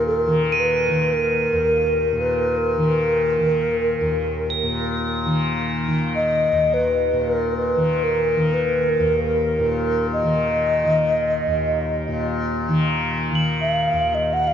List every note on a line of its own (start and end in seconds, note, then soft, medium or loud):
0.00 1.52 D#2 medium
0.00 2.12 A#2 soft
0.00 0.27 D#3 soft
0.06 0.61 A#4 medium
0.27 0.88 D#3 soft
0.52 7.76 D#7 medium
0.60 1.15 B4 medium
0.88 2.78 D#3 soft
1.14 2.22 A#4 medium
1.52 4.00 D#2 soft
2.13 4.63 A#2 soft
2.21 2.59 B4 medium
2.57 4.66 A#4 medium
2.78 3.39 D#3 soft
3.39 5.26 D#3 medium
4.01 6.51 D#2 soft
4.50 11.74 A#7 medium
4.63 7.13 A#2 medium
5.26 5.88 D#3 soft
5.88 7.76 D#3 medium
6.16 6.75 D#5 medium
6.52 8.99 D#2 soft
6.74 7.24 B4 medium
7.13 9.59 A#2 medium
7.22 7.56 A#4 medium
7.57 8.05 B4 medium
7.76 8.36 D#3 soft
8.04 8.55 A#4 medium
8.36 10.23 D#3 medium
8.54 8.91 B4 medium
8.89 9.22 A#4 medium
9.00 11.46 D#2 medium
9.23 10.07 A#4 medium
9.59 12.07 A#2 medium
10.13 12.04 D#5 medium
10.23 10.84 D#3 soft
10.84 12.69 D#3 soft
11.47 13.93 D#2 soft
12.08 14.54 A#2 medium
12.69 13.31 D#3 medium
13.31 14.54 D#3 soft
13.35 14.54 F#7 soft
13.61 14.16 F5 medium
13.93 14.54 D#2 medium
14.15 14.35 D#5 medium
14.33 14.49 F#5 medium
14.47 14.54 F5 medium